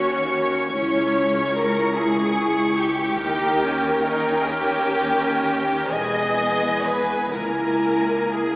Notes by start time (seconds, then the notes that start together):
Already playing: D#2 C#4 F#4 C#5 C#6
0.29 C#5
0.72 C#2 C#4 E4 C#5
1.55 A#4
1.96 E4 G#4 C#6
2.78 G4
3.20 D#2 D#4 A#4 G5
3.63 C#4
4.04 C#4 D#4
4.41 G#4
4.47 G4
5.43 G4
5.92 E1 E2 B3 G#4 D#5 G#5
6.87 B4
7.33 C#2 A#3 E4 A#4 G#5
8.30 G#4